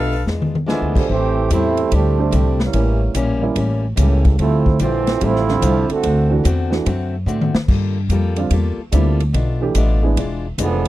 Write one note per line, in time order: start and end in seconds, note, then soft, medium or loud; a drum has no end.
0.00 0.23 B1 medium
0.00 0.14 B2 medium
0.00 0.14 A3 medium
0.00 0.14 D4 medium
0.00 0.23 D4 medium
0.00 0.14 F4 medium
0.00 0.24 A4 medium
0.00 0.24 B4 medium
0.00 0.24 F5 loud
0.12 open hi-hat soft
0.26 0.77 E2 medium
0.26 0.55 E3 soft
0.26 0.55 G#3 soft
0.26 0.56 D4 soft
0.26 0.56 F4 soft
0.26 snare soft
0.42 high tom medium
0.55 high tom medium
0.66 1.06 D3 medium
0.66 0.95 E3 medium
0.66 1.07 F3 medium
0.66 0.95 G#3 medium
0.66 1.06 G#3 medium
0.66 1.06 B3 medium
0.66 0.96 D4 medium
0.66 1.09 F4 medium
0.66 0.96 F4 medium
0.66 1.09 D5 medium
0.66 1.09 E5 medium
0.66 1.09 G#5 medium
0.66 snare medium
0.82 0.94 D2 medium
0.95 1.08 A#1 medium
0.95 1.08 A3 medium
0.95 1.08 D4 medium
0.95 1.08 G4 medium
0.95 1.09 C5 medium
0.95 kick medium
0.95 crash medium
1.09 1.49 A1 medium
1.09 1.37 A2 soft
1.09 1.48 E3 medium
1.09 1.38 G3 soft
1.09 1.48 A3 medium
1.09 1.48 C4 loud
1.09 1.38 C4 soft
1.09 1.38 E4 medium
1.09 1.48 G4 loud
1.09 kick soft
1.50 1.90 E2 medium
1.50 1.79 A2 medium
1.50 1.79 G3 medium
1.50 1.92 G3 medium
1.50 1.92 A3 loud
1.50 1.92 C4 loud
1.50 1.79 C4 medium
1.50 1.79 E4 medium
1.50 1.92 E4 loud
1.50 kick soft
1.50 hi-hat pedal medium
1.50 ride medium
1.77 ride soft
1.90 2.32 D2 medium
1.90 2.19 A2 medium
1.90 2.20 G3 medium
1.90 2.60 G3 medium
1.90 2.61 A3 medium
1.90 2.20 C4 medium
1.90 2.60 C4 medium
1.90 2.61 D4 loud
1.90 2.20 E4 medium
1.90 kick soft
1.90 ride medium
2.19 2.31 A3 medium
2.19 2.31 D4 medium
2.19 2.32 G4 medium
2.19 2.32 C5 medium
2.31 2.73 C2 loud
2.31 2.60 A2 medium
2.31 2.61 G3 medium
2.31 2.61 C4 medium
2.31 2.61 E4 medium
2.31 kick soft
2.31 hi-hat pedal medium
2.31 ride medium
2.60 3.13 E3 medium
2.60 3.13 G3 medium
2.60 3.13 A#3 medium
2.60 3.13 C#4 medium
2.60 snare medium
2.73 3.14 A1 medium
2.73 3.02 A2 soft
2.73 2.98 G3 soft
2.73 3.02 G3 soft
2.73 2.99 A#3 soft
2.73 3.03 A#3 soft
2.73 2.98 C#4 soft
2.73 3.03 C#4 medium
2.73 2.99 E4 medium
2.73 kick soft
2.73 ride medium
3.14 3.55 A#1 loud
3.14 3.43 A2 medium
3.14 3.44 G3 medium
3.14 3.44 A#3 medium
3.14 3.44 C#4 medium
3.14 kick soft
3.14 hi-hat pedal medium
3.14 ride medium
3.42 3.55 G3 medium
3.42 3.55 A#3 medium
3.42 3.55 C#4 medium
3.42 3.55 E4 medium
3.55 3.96 A1 medium
3.55 3.84 A2 medium
3.55 3.84 G3 medium
3.55 3.85 A#3 medium
3.55 3.86 C#4 medium
3.55 kick soft
3.55 ride medium
3.96 4.37 C#2 loud
3.96 4.25 A2 medium
3.96 4.35 C#3 medium
3.96 4.36 E3 medium
3.96 4.26 G3 medium
3.96 4.36 G3 medium
3.96 4.36 A3 medium
3.96 4.26 A#3 medium
3.96 4.26 C#4 medium
3.96 kick soft
3.96 hi-hat pedal medium
3.96 ride medium
4.25 kick medium
4.25 ride soft
4.38 4.79 D2 medium
4.38 4.67 D3 soft
4.38 4.77 F3 medium
4.38 4.68 G3 soft
4.38 4.77 A3 medium
4.38 4.77 C4 medium
4.38 4.68 C4 soft
4.38 4.77 E4 loud
4.38 4.69 F4 soft
4.38 kick soft
4.38 ride medium
4.66 kick medium
4.79 5.20 A#1 loud
4.79 5.08 D3 medium
4.79 5.22 E3 medium
4.79 5.22 F3 medium
4.79 5.08 G3 medium
4.79 5.22 A3 medium
4.79 5.09 C4 medium
4.79 5.21 C4 loud
4.79 5.09 F4 medium
4.79 kick soft
4.79 hi-hat pedal medium
4.79 ride medium
5.07 snare medium
5.07 ride medium
5.20 5.61 A1 medium
5.20 5.49 D3 soft
5.20 5.90 F3 loud
5.20 5.49 G3 medium
5.20 5.89 A3 medium
5.20 5.50 C4 medium
5.20 5.90 C4 loud
5.20 5.90 E4 loud
5.20 5.50 F4 soft
5.20 kick soft
5.20 ride medium
5.36 snare soft
5.48 6.01 D3 medium
5.48 6.01 G3 medium
5.48 6.01 C4 medium
5.48 6.02 E4 medium
5.48 snare soft
5.61 5.87 C2 loud
5.61 5.90 D3 medium
5.61 5.91 G3 medium
5.61 5.91 C4 medium
5.61 5.91 F4 medium
5.61 kick soft
5.61 hi-hat pedal medium
5.61 ride medium
5.90 6.42 D3 medium
5.90 6.42 A3 medium
5.90 6.42 C4 medium
5.90 6.41 F#4 loud
5.90 muted upright bass stroke soft
5.90 ride soft
6.03 6.44 D2 loud
6.03 6.32 D3 soft
6.03 6.32 A3 medium
6.03 6.32 C4 medium
6.03 6.33 F#4 soft
6.03 kick soft
6.03 ride medium
6.30 6.43 E3 medium
6.30 6.43 A3 medium
6.30 6.43 D4 medium
6.30 6.44 F#4 medium
6.44 6.85 E2 loud
6.44 6.73 D3 medium
6.44 6.73 A3 medium
6.44 6.73 C4 medium
6.44 6.74 F#4 medium
6.44 kick soft
6.44 hi-hat pedal medium
6.44 ride medium
6.70 6.84 E3 medium
6.70 6.84 A3 medium
6.70 6.84 D4 soft
6.70 6.85 F#4 medium
6.70 snare soft
6.85 7.26 F#2 medium
6.85 7.14 D3 medium
6.85 7.15 A3 medium
6.85 7.15 C4 medium
6.85 7.15 F#4 medium
6.85 kick soft
6.85 ride medium
7.26 7.52 A2 medium
7.26 7.55 D3 medium
7.26 7.56 A3 medium
7.26 7.56 C4 medium
7.26 7.56 F#4 medium
7.26 hi-hat pedal medium
7.41 high tom medium
7.54 muted upright bass stroke soft
7.54 snare medium
7.68 8.09 G2 loud
7.68 7.97 G3 soft
7.68 7.98 A#3 medium
7.68 7.98 F4 medium
7.68 7.99 A4 medium
7.68 kick medium
7.68 crash medium
8.09 8.50 F2 medium
8.09 8.39 G3 medium
8.09 8.39 A#3 medium
8.09 8.40 F4 medium
8.09 8.40 A4 medium
8.09 kick soft
8.09 hi-hat pedal medium
8.09 ride medium
8.36 8.50 D3 medium
8.36 8.50 G3 medium
8.36 8.50 C4 medium
8.36 8.51 F4 medium
8.36 ride soft
8.50 8.76 E2 medium
8.50 8.80 G3 medium
8.50 8.80 A#3 medium
8.50 8.81 F4 medium
8.50 8.81 A4 medium
8.50 kick soft
8.50 ride medium
8.78 muted upright bass stroke soft
8.92 9.33 D2 loud
8.92 9.16 D3 medium
8.92 9.17 G3 medium
8.92 9.21 G3 medium
8.92 9.21 A#3 medium
8.92 9.17 C4 medium
8.92 9.18 E4 medium
8.92 9.22 F4 medium
8.92 9.22 A4 medium
8.92 kick soft
8.92 hi-hat pedal medium
8.92 ride medium
9.20 ride medium
9.33 9.74 B1 medium
9.33 9.62 B2 soft
9.33 9.63 A3 medium
9.33 9.63 D4 medium
9.33 9.63 F4 medium
9.33 kick soft
9.33 ride medium
9.61 9.74 E3 medium
9.61 9.74 A3 medium
9.61 9.74 D4 medium
9.61 9.75 G4 medium
9.75 10.15 A1 loud
9.75 10.04 B2 medium
9.75 10.04 A3 medium
9.75 10.05 D4 medium
9.75 10.05 F4 medium
9.75 kick soft
9.75 hi-hat pedal medium
9.75 ride medium
10.03 10.15 G#3 medium
10.03 10.16 B3 medium
10.03 10.16 D4 medium
10.03 10.16 E4 medium
10.17 10.57 E1 medium
10.17 10.45 E3 medium
10.17 10.45 G#3 medium
10.17 10.46 D4 medium
10.17 10.47 F4 medium
10.17 kick soft
10.17 ride medium
10.58 10.88 F1 medium
10.58 10.88 D3 medium
10.58 10.86 E3 medium
10.58 10.88 F3 medium
10.58 10.87 G#3 medium
10.58 10.88 G#3 medium
10.58 10.88 B3 loud
10.58 10.87 D4 medium
10.58 10.87 F4 medium
10.58 kick soft
10.58 hi-hat pedal medium
10.58 ride medium